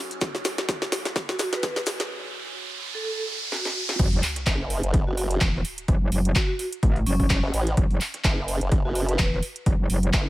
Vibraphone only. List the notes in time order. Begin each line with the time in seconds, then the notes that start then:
1.29 F#4
1.40 F#4
1.53 B4
1.63 B4
2.95 A4
3.05 A4
3.52 F#4
5.07 F#4
5.18 F#4
6.36 F#4
6.49 F#4
7.07 C#4
8.85 F#4
8.96 F#4
9.09 B4